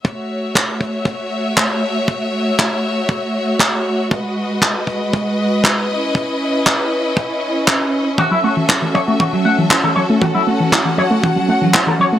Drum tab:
CP |--x---x-|--x---x-|--x---x-|--x---x-|
BD |o-ooo-o-|o-o-o-o-|o-ooo-o-|o-o-o-o-|

CP |--x---x-|--x---x-|
BD |o-ooo-o-|o-o-o-o-|